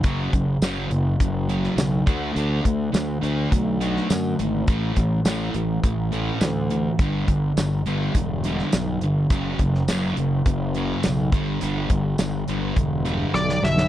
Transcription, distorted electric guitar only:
\new Staff \with { instrumentName = "Distorted electric guitar" } { \clef bass \time 4/4 \key g \lydian \tempo 4 = 104 <fis, cis fis>8 <fis, cis>8 <fis, cis fis>8 <fis, cis>8 <fis, cis>8 <fis, cis fis>8 <fis, cis>8 <d a d'>8 | <d a d'>8 <d a>8 <d a>8 <d a d'>8 <d a>8 <d a d'>8 <d a>8 <d a>8 | <a, e a>8 <a, e>8 <a, e a>8 <a, e>8 <a, e>8 <a, e a>8 <a, e>8 <a, e>8 | <g, d g>8 <g, d>8 <g, d>8 <g, d g>8 <g, d>8 <g, d g>8 <g, d>8 <g, d>8 |
<fis, cis fis>8 <fis, cis>8 <fis, cis fis>8 <fis, cis>8 <fis, cis>8 <fis, cis fis>8 <fis, cis>8 <g, d g>8 | <g, d g>8 <g, d>8 <g, d>8 <g, d g>8 <g, d>8 <g, d g>8 <g, d>8 <g, d>8 | }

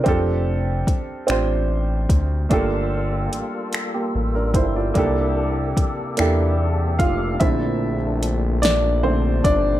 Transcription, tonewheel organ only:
\new Staff \with { instrumentName = "Tonewheel organ" } { \time 6/8 \key bes \lydian \tempo 4. = 49 r2. | <g bes f' a'>2. | <c bes d' g'>2. | <bes, a d'>2. | }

